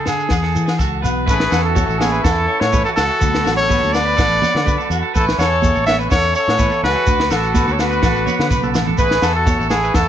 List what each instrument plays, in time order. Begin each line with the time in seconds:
0.06 clean electric guitar D3 A4, trumpet G#4, snare, low agogo, shekere
0.20 shekere
0.29 fingered electric bass E2, clean electric guitar E3 G#4, kick, snare, low agogo, shekere
0.43 clean electric guitar A4, snare
0.55 fingered electric bass E3, shekere
0.66 clean electric guitar G#4, snare, low agogo, shekere
0.79 fingered electric bass C#2, clean electric guitar F#4 A4, kick, snare, shekere
1.02 fingered electric bass B1, clean electric guitar B3 F#4 B4, low agogo, shekere
1.26 fingered electric bass A1, clean electric guitar A2 E3 C#4 E4 A4 B4, trumpet B4, transistor combo organ E5 G#5 C#6, kick, muted conga, shekere
1.32 trumpet G#4
1.40 snare
1.51 fingered electric bass E2, clean electric guitar A4, snare, muted conga, low agogo, shekere
1.64 trumpet F#4 A4
1.75 clean electric guitar E3 C#5, kick, high conga, shekere
1.88 fingered electric bass A1, clean electric guitar A4, shekere
1.99 clean electric guitar C#4, trumpet E4 G#4, snare, muted conga, high conga, low agogo, shekere
2.12 clean electric guitar B4, shekere
2.23 fingered electric bass E2, clean electric guitar A2 A4, trumpet E4 A4, kick, snare, muted conga, low agogo, shekere
2.48 clean electric guitar C#5
2.61 fingered electric bass A2, trumpet A4 C#5, snare, low agogo
2.72 clean electric guitar E3 B4, kick, high conga, shekere
2.84 trumpet F#4 A4, clean electric guitar A4, shekere
2.96 fingered electric bass C#2, clean electric guitar E4, trumpet F#4 A4, snare, low agogo, shekere
3.08 clean electric guitar A4
3.20 fingered electric bass D2, clean electric guitar D3 F#3 B3 D4 F#4, transistor combo organ F#5 A5 B5, muted clean electric guitar stroke, kick, muted conga, shekere
3.34 snare, shekere
3.44 fingered electric bass A1, clean electric guitar F#4 A4, snare, muted conga, low agogo, shekere
3.57 trumpet A4 C#5
3.68 clean electric guitar F#3 B4, kick, high conga, shekere
3.81 fingered electric bass D2, clean electric guitar A4, shekere
3.93 clean electric guitar B3, trumpet B4 D5, snare, low agogo, shekere
4.05 clean electric guitar B4, shekere
4.17 fingered electric bass A1, clean electric guitar A2 A4, kick, snare, muted conga, low conga, low agogo, shekere
4.42 clean electric guitar C#5, high conga, low conga, shekere
4.55 fingered electric bass D3, snare, low agogo
4.66 clean electric guitar F#3 B4, kick, high conga, shekere
4.78 clean electric guitar A4, shekere
4.90 fingered electric bass E2, clean electric guitar F#4, low agogo, shekere
5.03 clean electric guitar A4
5.14 fingered electric bass A1, clean electric guitar A2 B4, trumpet E4 A4, transistor combo organ E5 G#5 C#6, kick, muted conga, shekere
5.28 snare, shekere
5.38 fingered electric bass E2, clean electric guitar G#4 A4, trumpet A4 C#5, snare, muted conga, low agogo, shekere
5.62 clean electric guitar E3, kick, high conga, shekere
5.75 fingered electric bass A1, clean electric guitar A4, shekere
5.87 clean electric guitar C#4, trumpet C#5 E5, snare, muted conga, high conga, low agogo, shekere
5.99 clean electric guitar B4, shekere
6.10 fingered electric bass E2, clean electric guitar A2 A4, trumpet C#5, kick, snare, muted conga, low agogo, shekere
6.14 trumpet A4
6.35 trumpet A4 C#5, clean electric guitar C#5, shekere
6.48 fingered electric bass A2, snare, low agogo
6.59 clean electric guitar E3 B4, kick, high conga, shekere
6.71 clean electric guitar A4, shekere
6.83 fingered electric bass C#2, trumpet F#4 B4, clean electric guitar G#4, snare, low agogo
6.95 clean electric guitar A4
7.06 fingered electric bass D2, clean electric guitar D3 B4, transistor combo organ F#5 B5 D6, kick, muted conga, shekere
7.19 snare, shekere
7.31 fingered electric bass A1, clean electric guitar F#4 A4, trumpet F#4 A4, snare, muted conga, low agogo, shekere
7.44 shekere
7.54 clean electric guitar B4, kick, snare, high conga, shekere
7.67 fingered electric bass D2, clean electric guitar A4, shekere
7.72 trumpet A4 C#5
7.78 clean electric guitar B3, trumpet F#4 B4, snare, muted conga, low agogo, shekere
7.91 clean electric guitar B4, shekere
8.02 fingered electric bass A1, clean electric guitar A2 A4, kick, snare, muted conga, low conga, low agogo, shekere
8.16 shekere
8.26 clean electric guitar C#5, high conga, low conga, shekere
8.39 fingered electric bass D3, snare, high conga, low agogo
8.50 fingered electric bass B1, clean electric guitar C#3 B4, kick, snare, high conga, shekere
8.63 clean electric guitar A4, high conga, shekere
8.75 fingered electric bass A1, clean electric guitar B2, snare, low conga, low agogo, shekere
8.87 clean electric guitar A4, low conga
8.98 fingered electric bass A1, clean electric guitar A2 B4, trumpet G#4 B4, transistor combo organ E5 G#5 C#6, kick, muted conga, shekere
9.11 snare, shekere
9.22 fingered electric bass E2, clean electric guitar A4, snare, muted conga, low agogo, shekere
9.36 trumpet F#4 A4
9.46 clean electric guitar E3 C#5, kick, snare, high conga, shekere
9.59 fingered electric bass A1, clean electric guitar A4, shekere
9.70 trumpet E4 G#4, snare, muted conga, high conga, low agogo, shekere
9.84 clean electric guitar B4, shekere
9.94 fingered electric bass E2, clean electric guitar A2 A4, trumpet E4 A4, kick, snare, muted conga, low agogo, shekere